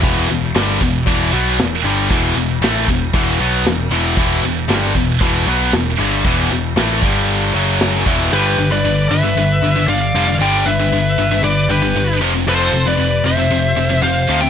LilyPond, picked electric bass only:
\new Staff \with { instrumentName = "Picked electric bass" } { \clef bass \time 4/4 \key e \phrygian \tempo 4 = 116 e,,8 e,,8 g,,8 e,,8 e,,8 b,,8 e,,8 g,,8 | e,,8 e,,8 a,,8 e,,8 e,,8 b,,8 e,,8 e,,8 | e,,8 e,,8 g,,8 e,,8 e,,8 b,,8 e,,8 g,,8 | e,,8 e,,8 a,,8 g,,4 fis,,4 e,,8 |
g,,8 g,,8 g,,8 g,,8 g,,8 g,,8 g,,8 f,,8 | g,,8 g,,8 g,,8 g,,8 g,,8 g,,8 g,,8 f,,8 | f,,8 f,,8 f,,8 f,,8 f,,8 f,,8 f,,8 d,8 | }